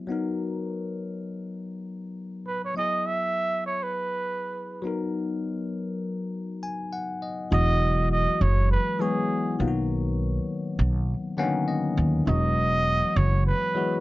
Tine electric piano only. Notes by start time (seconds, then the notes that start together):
Already playing: B3 E4 G#4
0.07 F#3 B3 D#4
0.12 A#4
2.74 F#3 B3 E4
2.79 G#4
4.82 F#3 B3 D#4
4.87 A#4
6.63 G#5
6.93 F#5
7.22 D#5
7.51 E3 F#3 G#3 B3 F#4
8.99 E3 F#3 G#3 B3 F#4
9.59 D#3 F#3 A#3 B3 F4
9.68 F#4
11.37 D3 F#3 A#3 B3 C#4 F#5
11.43 D#3
11.68 D#5
12.26 E3 F#3 G#3 B3 F#4
13.74 E3 F#3 G#3 B3 F#4